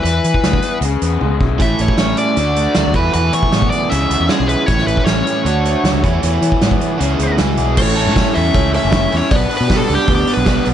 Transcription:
0.03 fingered electric bass E2, overdriven electric guitar E3, lead electric guitar B4, closed hi-hat
0.24 fingered electric bass E3, closed hi-hat
0.34 kick
0.44 fingered electric bass D2, overdriven electric guitar B3, snare, closed hi-hat
0.53 kick
0.62 overdriven electric guitar E3, closed hi-hat
0.81 fingered electric bass C#2, overdriven electric guitar C#3, closed hi-hat
1.02 fingered electric bass E2, overdriven electric guitar B3, closed hi-hat
1.21 fingered electric bass C#2, overdriven electric guitar G#3, high tom
1.41 fingered electric bass B1, overdriven electric guitar E4, kick
1.59 fingered electric bass A1, overdriven electric guitar A2 E3 A3 C#4 E4, lead electric guitar E5, kick, closed hi-hat
1.79 fingered electric bass A1, lead electric guitar C#5, closed hi-hat
1.88 kick
1.98 fingered electric bass A1, overdriven electric guitar C#4, snare, closed hi-hat
2.17 overdriven electric guitar E3, lead electric guitar D5, closed hi-hat
2.36 fingered electric bass D2, overdriven electric guitar D3 A3 D4 F#4, closed hi-hat
2.56 overdriven electric guitar A3, closed hi-hat
2.75 fingered electric bass D2, overdriven electric guitar F#3, snare, closed hi-hat
2.87 fingered electric bass D2
2.93 overdriven electric guitar E2 B2 E3 A3 B3 E4, fingered electric bass E2, lead electric guitar B4, kick, closed hi-hat
3.13 fingered electric bass E2, overdriven electric guitar E3, lead electric guitar B4, closed hi-hat
3.33 fingered electric bass E3, lead electric guitar C#5, closed hi-hat
3.43 kick
3.52 fingered electric bass A2, overdriven electric guitar B3, snare, closed hi-hat
3.62 kick
3.70 overdriven electric guitar E3, lead electric guitar D5, closed hi-hat
3.90 fingered electric bass C#2, overdriven electric guitar C#3 E3 G#3 C#4 E4, lead electric guitar E5, closed hi-hat
4.09 fingered electric bass C#2, overdriven electric guitar B3, closed hi-hat
4.20 fingered electric bass E2
4.29 overdriven electric guitar G#3, lead electric guitar G#4, snare, closed hi-hat
4.40 fingered electric bass B1
4.48 overdriven electric guitar E4, lead electric guitar B4, closed hi-hat
4.66 fingered electric bass A1, overdriven electric guitar A2 E3 A3 C#4 E4, lead electric guitar C#5, kick, closed hi-hat
4.78 snare
4.87 fingered electric bass A1, lead electric guitar B4, closed hi-hat
4.97 kick
5.05 fingered electric bass A1, overdriven electric guitar C#4, lead electric guitar C#5, snare, closed hi-hat
5.26 overdriven electric guitar E3, closed hi-hat
5.45 fingered electric bass D2, overdriven electric guitar D3 A3 D4 F#4, closed hi-hat
5.65 overdriven electric guitar A3, closed hi-hat
5.84 fingered electric bass D2, overdriven electric guitar F#3, snare, closed hi-hat
5.93 fingered electric bass C#2
6.02 overdriven electric guitar E2 B2 E3 A3 B3 E4, fingered electric bass E2, kick, closed hi-hat
6.23 fingered electric bass E2, overdriven electric guitar E3, closed hi-hat
6.41 fingered electric bass E3, closed hi-hat
6.52 kick
6.61 fingered electric bass G#2, overdriven electric guitar B3, snare, closed hi-hat
6.71 kick
6.80 overdriven electric guitar E3, closed hi-hat
6.98 fingered electric bass C#2, overdriven electric guitar C#3 E3 G#3 C#4 E4, closed hi-hat
7.18 fingered electric bass C#2, overdriven electric guitar B3, closed hi-hat
7.29 fingered electric bass D2
7.37 fingered electric bass C#2, overdriven electric guitar E2 B2 E3 G#3 B3 E4, snare, closed hi-hat
7.57 fingered electric bass B1, overdriven electric guitar G#4, closed hi-hat
7.76 fingered electric bass A1, overdriven electric guitar A2 E3 A3 C#4 E4, synth bell A4, lead electric guitar C#5, kick, crash
7.96 overdriven electric guitar A3 C#4 E4 A4, open hi-hat
8.06 fingered electric bass A2
8.15 overdriven electric guitar A2 E3 A3 C#4 E4, kick, snare, open hi-hat
8.34 fingered electric bass E2, overdriven electric guitar A3 C#4 E4, lead electric guitar E5, open hi-hat
8.54 fingered electric bass C#2, overdriven electric guitar E3 A3 C#4 E4, synth bell C#5, kick, open hi-hat
8.73 overdriven electric guitar A2 E3 A3 C#4 E4, lead electric guitar E5, open hi-hat
8.85 fingered electric bass F#1
8.90 overdriven electric guitar E3 A3 C#4 E4, kick, snare, open hi-hat
8.95 overdriven electric guitar E4
9.10 fingered electric bass E2, overdriven electric guitar A3 C#4 E4, open hi-hat
9.17 lead electric guitar C#5
9.30 fingered electric bass B1, overdriven electric guitar B2 G3 B3 D4, synth bell D5, kick, open hi-hat
9.36 lead electric guitar B4
9.50 overdriven electric guitar G3 B3 D4 B4, open hi-hat
9.57 fingered electric bass B2, lead electric guitar B4
9.68 overdriven electric guitar B2 G3 B3 D4 G4, kick, snare, open hi-hat
9.76 lead electric guitar A4
9.87 fingered electric bass C#2, overdriven electric guitar G3 B3 D4, open hi-hat
9.95 lead electric guitar G4
10.06 fingered electric bass D2, overdriven electric guitar B2 G3 B3, kick, open hi-hat
10.10 overdriven electric guitar D4
10.15 lead electric guitar G4
10.26 overdriven electric guitar B2 G3 B3 D4, open hi-hat
10.33 fingered electric bass B1, lead electric guitar B4
10.45 overdriven electric guitar B2 G3 B3 D4 G4, kick, snare, open hi-hat
10.65 fingered electric bass B1, overdriven electric guitar G3 B3 D4, open hi-hat

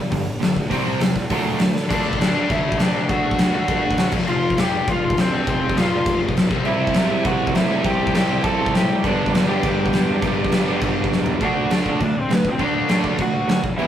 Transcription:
0.10 picked electric bass G1, distorted electric guitar G2 D3, kick, open hi-hat
0.41 picked electric bass G1, distorted electric guitar G2 D3, snare, open hi-hat
0.56 picked electric bass D2, kick
0.70 picked electric bass C2, distorted electric guitar C3 G3 C4, kick, open hi-hat
0.87 picked electric bass C2
1.01 picked electric bass E2, distorted electric guitar C3 G3, snare, open hi-hat
1.16 kick
1.29 picked electric bass D2, distorted electric guitar D3 A3 D4, overdriven electric guitar F#3, kick, open hi-hat
1.59 picked electric bass D2, distorted electric guitar D3 A3, overdriven electric guitar F#3, snare, open hi-hat
1.75 picked electric bass D3, snare
1.88 picked electric bass D2, distorted electric guitar D3 A3 D4, lead electric guitar D4 D5, kick, crash
2.13 kick
2.19 picked electric bass D2, lead electric guitar D4 D5, snare, crash
2.34 distorted electric guitar D3 A3 D4
2.50 picked electric bass D2, lead electric guitar E4 E5, kick, crash
2.65 picked electric bass D2
2.72 kick
2.78 picked electric bass C3, lead electric guitar D4 D5, snare, crash
3.08 picked electric bass D2, distorted electric guitar D3 A3 D4, lead electric guitar F#4 F#5, kick, crash
3.31 kick
3.38 picked electric bass D2, snare, crash
3.52 distorted electric guitar D3 A3 D4, lead electric guitar F#4 F#5
3.68 picked electric bass D2, kick, crash
3.85 picked electric bass D2
3.91 kick
3.97 picked electric bass C3, snare, crash
4.12 picked electric bass F1, distorted electric guitar F2 C3 F3, kick, crash
4.27 picked electric bass F1, lead electric guitar F4 F5, crash
4.50 kick
4.57 picked electric bass F1, distorted electric guitar F2 C3 F3, lead electric guitar G4, snare, crash
4.63 lead electric guitar G5
4.88 picked electric bass F1, lead electric guitar F4 F5, kick, crash
5.03 picked electric bass F1
5.10 kick
5.17 picked electric bass D2, lead electric guitar C4 C5, snare, crash
5.30 distorted electric guitar F2 C3 F3
5.47 picked electric bass F1, lead electric guitar C4 C5, kick, crash
5.69 kick
5.75 picked electric bass F1, distorted electric guitar F2 C3 F3, lead electric guitar F4, snare, crash
5.80 lead electric guitar F5
6.06 picked electric bass F1, kick, crash
6.23 picked electric bass F1
6.29 kick
6.36 picked electric bass B1, snare, crash
6.50 picked electric bass C2, distorted electric guitar C3 G3 C4, kick
6.65 picked electric bass C2, overdriven electric guitar C3 G3 C4 E4, lead electric guitar E4 E5, crash
6.87 kick
6.94 picked electric bass C2, distorted electric guitar C3 G3 C4, lead electric guitar E5, snare, crash
6.98 lead electric guitar E4
7.10 overdriven electric guitar C3 G3 C4 E4
7.25 picked electric bass C2, lead electric guitar F#4 F#5, kick, crash
7.42 picked electric bass C2
7.47 kick
7.55 picked electric bass A2, lead electric guitar E4 E5, snare, crash
7.68 distorted electric guitar C3 G3 C4
7.84 picked electric bass C2, overdriven electric guitar C3 G3 C4 E4, lead electric guitar G4 G5, kick, crash
8.07 kick
8.14 picked electric bass C2, distorted electric guitar C3 G3 C4, lead electric guitar G4 G5, snare, crash
8.28 overdriven electric guitar C3 G3 C4 E4
8.44 picked electric bass C2, lead electric guitar A4 A5, kick, crash
8.60 picked electric bass C2
8.66 kick
8.74 picked electric bass A2, lead electric guitar G4 G5, snare, crash
9.02 picked electric bass G1, distorted electric guitar G2 D3 G3, overdriven electric guitar B3 D4, lead electric guitar D4 D5, kick, crash
9.26 kick
9.34 picked electric bass G1, lead electric guitar D4 D5, snare, crash
9.47 distorted electric guitar G2 D3 G3, overdriven electric guitar B3 D4, lead electric guitar G4 G5
9.63 picked electric bass G1, kick, crash
9.77 picked electric bass G1
9.86 kick
9.92 picked electric bass E2, snare, crash
10.21 picked electric bass G1, distorted electric guitar G2 D3 G3, overdriven electric guitar B3 D4, kick, crash
10.44 kick
10.52 picked electric bass G1, snare, crash
10.66 distorted electric guitar G2 D3 G3, overdriven electric guitar B3 D4
10.81 picked electric bass G1, kick, crash
10.96 picked electric bass G1
11.04 kick
11.12 picked electric bass E2, snare
11.26 floor tom
11.41 picked electric bass D2, distorted electric guitar D3 A3 D4, kick, crash
11.45 lead electric guitar F#4 F#5
11.55 picked electric bass D2
11.70 picked electric bass D2, distorted electric guitar D3 A3 D4, snare, crash
11.86 lead electric guitar D4, kick
11.91 lead electric guitar D5
12.00 picked electric bass D2, distorted electric guitar D3 A3, lead electric guitar D4, kick, crash
12.05 lead electric guitar D5
12.17 picked electric bass D2, lead electric guitar C4 C5
12.29 picked electric bass D2, distorted electric guitar D3 A3, snare, crash
12.33 lead electric guitar B3 B4
12.45 picked electric bass D2, lead electric guitar C4, kick
12.51 lead electric guitar C5
12.58 picked electric bass D2, distorted electric guitar D3 A3 D4, kick, crash
12.63 lead electric guitar D4 D5
12.88 picked electric bass A1, distorted electric guitar D3 A3 D4, snare, crash
13.04 picked electric bass D2, kick
13.18 picked electric bass D2, distorted electric guitar D3 A3, lead electric guitar F#4 F#5, kick, crash
13.34 picked electric bass D2
13.48 picked electric bass D2, distorted electric guitar D3 A3, snare, crash
13.64 picked electric bass E1, kick
13.78 picked electric bass E1, distorted electric guitar E2 B2 E3, overdriven electric guitar G3 B3, lead electric guitar E4 E5, crash

